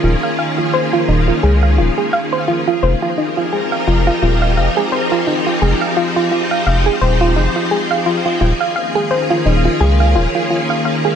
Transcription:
0.00 0.16 D#1 loud
0.00 2.79 D#3 medium
0.00 2.79 A#3 medium
0.00 2.79 C#4 medium
0.00 2.79 F4 medium
0.00 0.10 F4 medium
0.00 2.79 G#4 medium
0.23 0.32 F5 medium
0.39 0.54 F5 medium
0.58 0.71 F4 medium
0.73 0.84 C5 loud
0.93 1.01 F4 loud
1.08 1.31 D#1 medium
1.08 1.15 D#4 medium
1.28 1.33 F4 medium
1.43 1.80 C#2 loud
1.43 1.54 G#4 medium
1.63 1.71 F5 medium
1.78 1.90 D#1 loud
1.78 1.89 F4 loud
1.98 2.06 G#4 medium
2.13 2.29 F5 loud
2.33 2.45 C5 loud
2.48 2.54 F4 loud
2.67 2.72 F4 loud
2.83 2.95 F1 loud
2.83 8.37 F3 medium
2.83 8.37 C4 medium
2.83 8.37 D#4 medium
2.83 8.37 G4 medium
2.83 11.15 G#4 medium
2.83 5.59 A#4 medium
2.83 2.93 C5 loud
3.02 3.11 F4 loud
3.18 3.24 D#4 medium
3.37 3.42 F4 medium
3.53 3.63 G#4 medium
3.72 3.80 F5 medium
3.87 4.10 F1 medium
3.87 3.98 F4 loud
4.07 4.19 F4 loud
4.22 4.59 D#1 loud
4.22 4.29 F4 medium
4.42 4.50 F5 medium
4.57 4.69 F1 loud
4.57 4.73 F5 medium
4.77 4.82 G#4 loud
4.92 5.03 C5 loud
5.12 5.20 F4 loud
5.27 5.33 D#4 medium
5.46 5.51 F4 medium
5.62 5.74 F1 loud
5.62 5.72 G#4 medium
5.62 8.38 C5 medium
5.81 5.90 F5 medium
5.97 6.07 F4 loud
6.16 6.29 F4 loud
6.32 6.38 F4 medium
6.51 6.59 F5 medium
6.66 6.89 F1 medium
6.66 6.82 F5 medium
6.86 6.91 G#4 loud
7.01 7.38 D#1 loud
7.01 7.12 C5 loud
7.21 7.29 F4 loud
7.36 7.48 F1 loud
7.36 7.43 D#4 medium
7.56 7.61 F4 medium
7.71 7.82 G#4 medium
7.91 7.99 F5 medium
8.06 8.17 F4 loud
8.26 8.38 F4 loud
8.41 8.53 D#1 loud
8.41 11.15 D#3 medium
8.41 11.15 A#3 medium
8.41 11.15 C#4 medium
8.41 8.47 F4 medium
8.41 11.15 F4 medium
8.60 8.69 F5 medium
8.76 8.92 F5 medium
8.95 9.00 G#4 loud
9.11 9.21 C5 medium
9.30 9.38 F4 loud
9.46 9.68 D#1 medium
9.46 9.52 D#4 medium
9.65 9.70 F4 medium
9.80 10.17 C#2 loud
9.80 9.91 G#4 medium
10.00 10.08 F5 medium
10.15 10.27 D#1 loud
10.15 10.26 F4 loud
10.35 10.47 F4 medium
10.50 10.57 F4 medium
10.70 10.78 F5 medium
10.85 11.01 F5 medium
11.05 11.10 G#4 loud

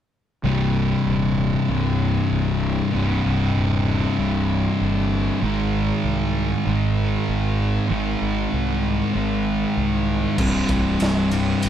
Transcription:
0.44 0.93 C1 loud
0.44 1.67 C2 medium
0.44 1.67 G2 medium
0.44 1.70 C3 medium
1.06 1.55 D#1 medium
1.67 2.17 C1 medium
1.67 2.90 C2 medium
1.67 2.92 G2 medium
1.67 2.92 C3 medium
2.31 2.80 C1 medium
2.92 3.18 C1 loud
2.92 4.15 C2 medium
2.92 4.16 G2 medium
2.92 4.17 C3 medium
3.26 3.49 C1 medium
3.56 4.04 D#1 medium
4.17 4.67 C1 medium
4.17 5.40 C2 medium
4.17 5.40 G2 medium
4.17 5.41 C3 medium
4.81 5.29 G1 loud
5.42 5.91 G#1 loud
5.42 6.65 G#2 medium
5.42 6.65 D#3 medium
5.42 6.68 G#3 medium
6.04 6.52 C2 medium
6.65 7.15 G#1 medium
6.65 7.88 G#2 medium
6.65 7.89 D#3 medium
6.65 7.90 G#3 medium
7.28 7.77 G#1 medium
7.89 8.14 G#1 loud
7.89 9.12 G#2 medium
7.89 9.13 D#3 medium
7.89 9.14 G#3 medium
8.21 8.46 G#1 medium
8.53 9.01 C2 medium
9.13 9.63 G#1 medium
9.13 10.37 G#2 medium
9.13 10.37 D#3 medium
9.13 10.38 G#3 medium
9.77 10.25 C2 medium
10.37 10.64 C1 loud
10.37 11.69 C2 medium
10.37 11.69 G2 medium
10.37 11.69 C3 medium
10.37 kick loud
10.37 crash loud
10.69 10.95 C1 medium
10.69 kick medium
10.69 ride medium
11.00 11.52 C1 medium
11.00 snare loud
11.00 ride medium
11.31 11.69 C2 medium
11.31 11.69 G2 medium
11.31 11.69 C3 medium
11.31 ride medium
11.62 11.69 G1 medium
11.62 ride medium

